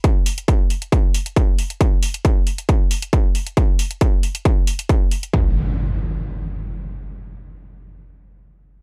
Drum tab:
HH |x-oxx-oxx-oxx-ox|x-oxx-oxx-oxx-ox|x-oxx-oxx-oxx-ox|----------------|
BD |o---o---o---o---|o---o---o---o---|o---o---o---o---|o---------------|

HH |----------------|
BD |----------------|